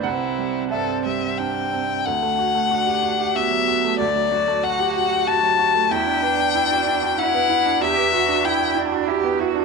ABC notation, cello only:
X:1
M:3/4
L:1/8
Q:1/4=94
K:Dmix
V:1 name="Cello"
C2 C3 z | z2 D2 B,2 | A, F4- F | E D3 E2 |
G F E D G F |]